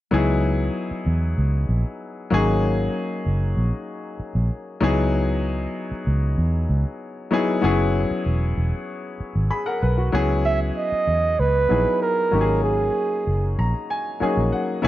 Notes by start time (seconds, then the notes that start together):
0.11 C#2 F#3 B3 D#4 E4 G#4
0.91 muted fingered electric bass stroke
1.06 E2
1.38 C#2
1.69 A#1
2.30 G#1 F#3 A#3 C#4 D#4 G#4
3.26 F#1
3.57 A#1
4.20 muted fingered electric bass stroke
4.35 A#1
4.81 C#2 F#3 B3 D#4 E4 G#4
5.91 muted fingered electric bass stroke
6.07 C#2
6.38 E2
6.69 C#2
7.31 F#3 B3 D#4 E4 G#4
7.61 F#1 F#3 B3 C#4 E4 G#4
8.11 muted fingered electric bass stroke
8.26 E1
8.57 E1
9.20 muted fingered electric bass stroke
9.36 G#1
9.50 G#4 B5
9.66 A#4 F#5
9.82 B1 B4
9.98 F#4
10.12 C#2 F#3 B3 C#4 E4 G#4
10.46 E5
10.77 D#5
10.92 muted fingered electric bass stroke
11.07 E2
11.39 C#2 B4
11.69 A#1 F#3 B3 D#4 E4 G#4
12.02 A#4
12.31 G#1 F#3 A#3 C#4 D#4 G4
12.41 G#4
12.64 G#4
13.27 F#1
13.59 A#1 A#5
13.90 G#5
14.20 F#3 A#3 C#4 D#4 G#4 G#5, muted fingered electric bass stroke
14.37 A#1
14.52 F#5
14.82 C#2 F#3 B3 C#4 E4 G#4 E5